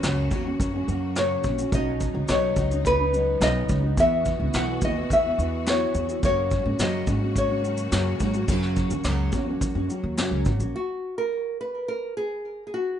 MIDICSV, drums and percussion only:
0, 0, Header, 1, 2, 480
1, 0, Start_track
1, 0, Tempo, 563910
1, 1467, Time_signature, 4, 2, 24, 8
1, 11062, End_track
2, 0, Start_track
2, 0, Title_t, "Drums"
2, 26, Note_on_c, 9, 82, 73
2, 30, Note_on_c, 9, 38, 93
2, 33, Note_on_c, 9, 39, 86
2, 112, Note_off_c, 9, 82, 0
2, 115, Note_off_c, 9, 38, 0
2, 118, Note_off_c, 9, 39, 0
2, 264, Note_on_c, 9, 82, 46
2, 266, Note_on_c, 9, 36, 90
2, 349, Note_off_c, 9, 82, 0
2, 352, Note_off_c, 9, 36, 0
2, 509, Note_on_c, 9, 36, 86
2, 515, Note_on_c, 9, 82, 75
2, 594, Note_off_c, 9, 36, 0
2, 600, Note_off_c, 9, 82, 0
2, 752, Note_on_c, 9, 82, 46
2, 838, Note_off_c, 9, 82, 0
2, 987, Note_on_c, 9, 82, 78
2, 988, Note_on_c, 9, 38, 91
2, 996, Note_on_c, 9, 39, 86
2, 1072, Note_off_c, 9, 82, 0
2, 1073, Note_off_c, 9, 38, 0
2, 1081, Note_off_c, 9, 39, 0
2, 1223, Note_on_c, 9, 82, 55
2, 1228, Note_on_c, 9, 36, 87
2, 1308, Note_off_c, 9, 82, 0
2, 1314, Note_off_c, 9, 36, 0
2, 1349, Note_on_c, 9, 82, 55
2, 1434, Note_off_c, 9, 82, 0
2, 1467, Note_on_c, 9, 36, 106
2, 1468, Note_on_c, 9, 82, 67
2, 1552, Note_off_c, 9, 36, 0
2, 1553, Note_off_c, 9, 82, 0
2, 1705, Note_on_c, 9, 82, 50
2, 1708, Note_on_c, 9, 36, 89
2, 1790, Note_off_c, 9, 82, 0
2, 1793, Note_off_c, 9, 36, 0
2, 1942, Note_on_c, 9, 82, 83
2, 1946, Note_on_c, 9, 38, 100
2, 1953, Note_on_c, 9, 39, 89
2, 2027, Note_off_c, 9, 82, 0
2, 2031, Note_off_c, 9, 38, 0
2, 2038, Note_off_c, 9, 39, 0
2, 2180, Note_on_c, 9, 82, 48
2, 2183, Note_on_c, 9, 36, 98
2, 2265, Note_off_c, 9, 82, 0
2, 2268, Note_off_c, 9, 36, 0
2, 2310, Note_on_c, 9, 82, 48
2, 2395, Note_off_c, 9, 82, 0
2, 2425, Note_on_c, 9, 36, 90
2, 2431, Note_on_c, 9, 82, 72
2, 2510, Note_off_c, 9, 36, 0
2, 2516, Note_off_c, 9, 82, 0
2, 2670, Note_on_c, 9, 82, 46
2, 2756, Note_off_c, 9, 82, 0
2, 2905, Note_on_c, 9, 82, 77
2, 2907, Note_on_c, 9, 38, 100
2, 2911, Note_on_c, 9, 39, 87
2, 2991, Note_off_c, 9, 82, 0
2, 2992, Note_off_c, 9, 38, 0
2, 2997, Note_off_c, 9, 39, 0
2, 3139, Note_on_c, 9, 82, 57
2, 3145, Note_on_c, 9, 36, 91
2, 3225, Note_off_c, 9, 82, 0
2, 3231, Note_off_c, 9, 36, 0
2, 3382, Note_on_c, 9, 82, 66
2, 3383, Note_on_c, 9, 36, 104
2, 3467, Note_off_c, 9, 82, 0
2, 3468, Note_off_c, 9, 36, 0
2, 3620, Note_on_c, 9, 82, 51
2, 3625, Note_on_c, 9, 36, 92
2, 3705, Note_off_c, 9, 82, 0
2, 3710, Note_off_c, 9, 36, 0
2, 3861, Note_on_c, 9, 82, 76
2, 3865, Note_on_c, 9, 38, 102
2, 3871, Note_on_c, 9, 39, 95
2, 3946, Note_off_c, 9, 82, 0
2, 3950, Note_off_c, 9, 38, 0
2, 3956, Note_off_c, 9, 39, 0
2, 4096, Note_on_c, 9, 82, 51
2, 4101, Note_on_c, 9, 36, 98
2, 4182, Note_off_c, 9, 82, 0
2, 4186, Note_off_c, 9, 36, 0
2, 4344, Note_on_c, 9, 36, 86
2, 4349, Note_on_c, 9, 82, 69
2, 4429, Note_off_c, 9, 36, 0
2, 4434, Note_off_c, 9, 82, 0
2, 4591, Note_on_c, 9, 82, 49
2, 4676, Note_off_c, 9, 82, 0
2, 4827, Note_on_c, 9, 82, 77
2, 4828, Note_on_c, 9, 38, 100
2, 4828, Note_on_c, 9, 39, 93
2, 4912, Note_off_c, 9, 82, 0
2, 4913, Note_off_c, 9, 38, 0
2, 4913, Note_off_c, 9, 39, 0
2, 5061, Note_on_c, 9, 82, 53
2, 5146, Note_off_c, 9, 82, 0
2, 5186, Note_on_c, 9, 82, 55
2, 5271, Note_off_c, 9, 82, 0
2, 5304, Note_on_c, 9, 36, 110
2, 5304, Note_on_c, 9, 82, 65
2, 5389, Note_off_c, 9, 36, 0
2, 5389, Note_off_c, 9, 82, 0
2, 5541, Note_on_c, 9, 82, 49
2, 5545, Note_on_c, 9, 36, 91
2, 5626, Note_off_c, 9, 82, 0
2, 5630, Note_off_c, 9, 36, 0
2, 5780, Note_on_c, 9, 82, 75
2, 5784, Note_on_c, 9, 38, 102
2, 5790, Note_on_c, 9, 39, 91
2, 5865, Note_off_c, 9, 82, 0
2, 5869, Note_off_c, 9, 38, 0
2, 5875, Note_off_c, 9, 39, 0
2, 6017, Note_on_c, 9, 82, 54
2, 6020, Note_on_c, 9, 36, 92
2, 6102, Note_off_c, 9, 82, 0
2, 6105, Note_off_c, 9, 36, 0
2, 6262, Note_on_c, 9, 36, 88
2, 6265, Note_on_c, 9, 82, 72
2, 6347, Note_off_c, 9, 36, 0
2, 6350, Note_off_c, 9, 82, 0
2, 6508, Note_on_c, 9, 82, 47
2, 6593, Note_off_c, 9, 82, 0
2, 6616, Note_on_c, 9, 82, 64
2, 6702, Note_off_c, 9, 82, 0
2, 6742, Note_on_c, 9, 82, 81
2, 6743, Note_on_c, 9, 38, 96
2, 6748, Note_on_c, 9, 39, 95
2, 6827, Note_off_c, 9, 82, 0
2, 6828, Note_off_c, 9, 38, 0
2, 6833, Note_off_c, 9, 39, 0
2, 6977, Note_on_c, 9, 82, 57
2, 6983, Note_on_c, 9, 36, 90
2, 7062, Note_off_c, 9, 82, 0
2, 7068, Note_off_c, 9, 36, 0
2, 7099, Note_on_c, 9, 82, 52
2, 7184, Note_off_c, 9, 82, 0
2, 7219, Note_on_c, 9, 82, 67
2, 7221, Note_on_c, 9, 36, 105
2, 7304, Note_off_c, 9, 82, 0
2, 7306, Note_off_c, 9, 36, 0
2, 7338, Note_on_c, 9, 38, 41
2, 7423, Note_off_c, 9, 38, 0
2, 7458, Note_on_c, 9, 82, 49
2, 7463, Note_on_c, 9, 36, 93
2, 7543, Note_off_c, 9, 82, 0
2, 7548, Note_off_c, 9, 36, 0
2, 7578, Note_on_c, 9, 82, 60
2, 7664, Note_off_c, 9, 82, 0
2, 7695, Note_on_c, 9, 82, 83
2, 7699, Note_on_c, 9, 38, 96
2, 7708, Note_on_c, 9, 39, 88
2, 7780, Note_off_c, 9, 82, 0
2, 7784, Note_off_c, 9, 38, 0
2, 7794, Note_off_c, 9, 39, 0
2, 7934, Note_on_c, 9, 82, 46
2, 7939, Note_on_c, 9, 36, 94
2, 8019, Note_off_c, 9, 82, 0
2, 8025, Note_off_c, 9, 36, 0
2, 8182, Note_on_c, 9, 36, 85
2, 8184, Note_on_c, 9, 82, 71
2, 8267, Note_off_c, 9, 36, 0
2, 8270, Note_off_c, 9, 82, 0
2, 8426, Note_on_c, 9, 82, 54
2, 8511, Note_off_c, 9, 82, 0
2, 8664, Note_on_c, 9, 82, 80
2, 8665, Note_on_c, 9, 38, 98
2, 8668, Note_on_c, 9, 39, 92
2, 8749, Note_off_c, 9, 82, 0
2, 8750, Note_off_c, 9, 38, 0
2, 8753, Note_off_c, 9, 39, 0
2, 8898, Note_on_c, 9, 82, 55
2, 8904, Note_on_c, 9, 36, 84
2, 8983, Note_off_c, 9, 82, 0
2, 8990, Note_off_c, 9, 36, 0
2, 9023, Note_on_c, 9, 82, 54
2, 9108, Note_off_c, 9, 82, 0
2, 11062, End_track
0, 0, End_of_file